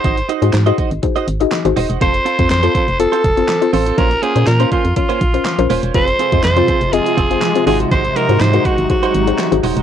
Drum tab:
HH |xxxxxxxxxxxxxxox|xxxxxxxxxxxxxxox|xxxxxxxxxxxxxxox|xxxxxxxxxxxxxxox|
CP |----x-------x---|----x-------x---|----x-------x---|----x-------x---|
SD |----o-------o---|----o-------o---|----o-------o---|----o-------o---|
BD |o-----o-o-------|o--o--o---o-----|o-----o-o-o-----|o--o--o---o-----|

HH |xxxxxxxxxxxxxxox|
CP |----x-------x---|
SD |----o-------o---|
BD |o-----o-o-------|